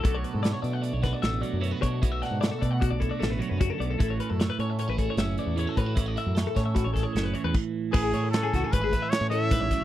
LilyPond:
<<
  \new Staff \with { instrumentName = "Clean electric guitar" } { \time 5/4 \key a \major \tempo 4 = 152 a'16 cis''16 b'16 a'16 d''16 cis''16 d''16 fis''16 d''16 cis''16 b'16 d''16 e''8 d''8 cis''16 b'16 cis''8 | d''16 e''16 fis''8 d''16 a'16 d''16 fis''16 fis'16 d''16 a'16 d''16 a'16 b'16 cis''16 b'16 fis'16 a'16 d''16 a'16 | a'16 cis''16 b'16 a'16 cis''16 b'16 cis''16 e''16 cis''16 b'16 a'16 cis''16 e''8 d''8 cis''16 a'16 b'8 | cis''16 d''16 e''8 cis''16 a'16 cis''16 e''16 fis'16 cis''16 a'16 cis''16 a'16 b'16 cis''16 b'16 r4 |
b'16 gis'16 cis''16 a'16 b'16 gis'16 fis'16 gis'16 b'16 gis'16 b'16 e''16 cis''8 a'8 b'16 cis''16 d''16 cis''16 | }
  \new Staff \with { instrumentName = "Trumpet" } { \time 5/4 \key a \major r1 r4 | r1 r4 | r1 r4 | r1 r4 |
gis'4 a'4 b'4 cis''8 e''4. | }
  \new Staff \with { instrumentName = "Clean electric guitar" } { \time 5/4 \key a \major << { <fis a d' fis'>8 d'8 e'16 fis'16 a8 d'8 fis'8 a4 e'16 fis'16 d'8 | e'16 fis'16 d'8 e'16 fis'16 a8 d'8 e'16 fis'16 a2 | e'16 fis'16 cis'16 e'16 a'8 cis'8 cis'16 e'16 gis'8 cis'4 e'16 fis'16 cis'16 e'16 | e'16 fis'16 e'8 a'8 cis'8 e'8 gis'8 cis'4 r4 |
e'8 e'8 cis'4 cis'16 e'8. cis'8 e'4. | } \\ { b,2.~ b,8 fis8 b,4 | b,2.~ b,8 fis8 cis8 b,8 | a,2.~ a,8 e8 a,4 | a,2.~ a,8 e4. |
a,4. e4 e4. gis,8 fis,8 | } >> }
  \new Staff \with { instrumentName = "Fingered electric bass" } { \clef bass \time 5/4 \key a \major b,,8 r16 gis,8 r16 b,8. b,,8 r16 a,,8 r16 fis,8 r16 b,8 | b,,8 r16 gis,8 r16 b,8. b,,8 r16 a,,8 r16 fis,8 r16 b,,8 | a,,8 r16 fis,8 r16 a,8. a,,8 r16 fis,,8 r16 e,8 r16 a,8 | a,,8 r16 fis,8 r16 a,8. a,,8 r16 fis,,8 r16 e,16 r4 |
a,,8 a,4 cis,16 r16 gis,,8 r8. a,4 a,,16 r8 | }
  \new DrumStaff \with { instrumentName = "Drums" } \drummode { \time 5/4 <hh bd>8 hh8 <hh sn>8 hh8 hh8 <hh bd sn>8 <hh sn>8 hh8 hh8 <hh bd>8 | <hh bd>8 <hh sn>8 <hh sn>8 <hh bd>8 <hh bd>8 <hh bd>8 <hh sn>8 hh8 <hh bd>8 hh8 | <hh bd>8 hh8 <hh sn>8 hh8 hh8 <hh bd>8 <hh sn>8 hh8 hh8 <hh bd>8 | <hh bd>8 hh8 <hh sn>8 <hh bd sn>8 <hh bd sn>8 <hh bd sn>8 <hh sn>8 hh8 <cymc bd>4 |
<cymc bd>8 hh8 <hh sn>8 <hh bd sn>8 <hh bd>8 <hh bd>8 <hh sn>8 hh8 <hh bd>8 <hh bd sn>8 | }
>>